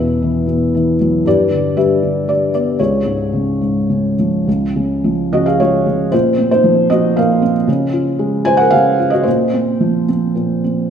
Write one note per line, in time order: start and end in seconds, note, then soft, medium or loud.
0.00 1.21 E2 medium
0.00 0.45 B2 soft
0.00 0.97 B4 medium
0.00 0.96 E5 medium
0.22 0.73 E3 soft
0.47 1.23 B2 soft
0.75 1.24 E3 soft
1.00 1.25 F#3 soft
1.26 2.75 G2 medium
1.26 1.75 G4 medium
1.26 1.75 B4 medium
1.26 1.74 D5 medium
1.51 2.01 D3 soft
1.77 2.26 G3 soft
1.77 2.49 G4 medium
1.77 2.49 B4 medium
1.77 2.29 E5 medium
2.03 2.77 D3 soft
2.28 2.78 G3 soft
2.28 2.53 D5 medium
2.54 2.79 B3 soft
2.54 2.78 D5 medium
2.79 4.43 C#2 soft
2.79 4.14 F4 soft
2.79 4.15 G#4 soft
2.79 4.14 C#5 medium
3.06 3.60 G#2 soft
3.33 3.88 C#3 soft
3.61 4.46 G#2 soft
3.90 4.46 C#3 soft
4.19 4.47 F3 soft
4.47 6.07 C#2 medium
4.76 5.31 C#3 medium
5.04 6.08 F3 medium
5.33 5.85 C#3 soft
5.33 5.45 F#4 medium
5.33 5.45 D#5 medium
5.46 5.59 G#4 medium
5.46 5.58 F5 medium
5.60 6.11 G#3 medium
5.60 6.09 F4 medium
5.60 6.14 C#5 medium
5.86 6.11 C#3 soft
6.12 7.15 A#2 medium
6.12 6.49 F4 medium
6.12 6.50 C5 medium
6.38 6.88 C4 medium
6.51 6.88 D#4 medium
6.51 6.87 C5 medium
6.64 7.65 F3 medium
6.90 7.41 C4 medium
6.90 7.16 F#4 medium
6.90 7.17 D#5 medium
7.16 7.66 A#2 medium
7.16 7.54 A#4 medium
7.16 7.53 F5 medium
7.42 7.67 C4 medium
7.68 8.71 C#3 medium
7.93 8.43 F4 medium
8.19 9.23 G#3 medium
8.45 8.98 F4 medium
8.45 8.58 C5 medium
8.45 8.59 G#5 loud
8.57 8.70 F#5 medium
8.61 8.73 A#4 medium
8.71 9.24 C#3 medium
8.71 9.11 G#4 medium
8.71 9.09 F5 loud
8.99 9.25 F4 medium
9.10 9.25 F#4 medium
9.10 9.25 D#5 medium
9.23 10.34 A#2 medium
9.23 10.03 C5 medium
9.28 10.05 F4 medium
9.53 10.07 C4 medium
9.80 10.89 F3 medium
10.09 10.63 C4 soft
10.35 10.90 A#2 soft
10.64 10.90 C4 soft